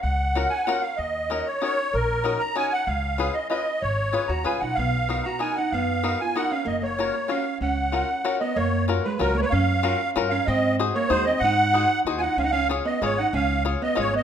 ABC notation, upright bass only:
X:1
M:3/4
L:1/8
Q:1/4=190
K:F#
V:1 name="Upright bass" clef=bass
C,,4 z2 | D,,4 z2 | A,,,4 z2 | C,,4 z2 |
G,,,3 D,, C,, B,,, | B,,,4 z2 | F,,4 z2 | F,,,4 z2 |
C,,4 z2 | F,,4 C,,2 | F,,4 =G,,2 | G,,4 D,,2 |
G,,4 D,,2 | C,,4 G,,,2 | C,,4 G,,,2 |]